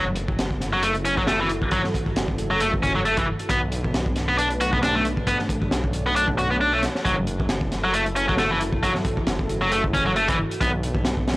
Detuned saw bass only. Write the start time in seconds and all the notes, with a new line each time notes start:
Already playing: F#1
2.06 F#1
2.16 F#1
3.50 B1
5.62 B1
5.72 B1
7.05 F#1
9.17 F#1
9.28 F#1
10.61 B1